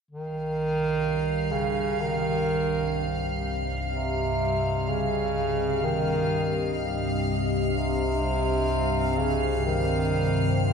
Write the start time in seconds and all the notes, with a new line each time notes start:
0.11 C2 G2 D#3 C4 F5
0.44 G4
1.32 D#5
1.51 C#3
1.93 C5
2.00 D#3
3.93 C3
4.89 C#3
5.84 D#3
7.74 C3
9.17 C#3
9.66 D#3